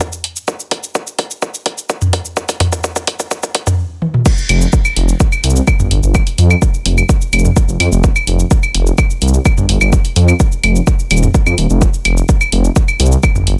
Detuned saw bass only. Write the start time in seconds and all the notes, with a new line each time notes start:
4.49 F1
4.96 F1
5.44 C2
5.79 G1
5.91 G1
6.03 G1
6.38 F2
6.85 F1
7.33 F1
7.68 F1
7.80 F2
7.92 F1
8.27 F1
8.74 F1
9.22 C2
9.57 G1
9.69 G1
9.81 G1
10.16 F2
10.63 F1
11.11 D#1
11.46 F2
11.58 D#1
11.70 F1
12.05 F1
12.52 F1
13.00 C2
13.35 G1
13.47 G1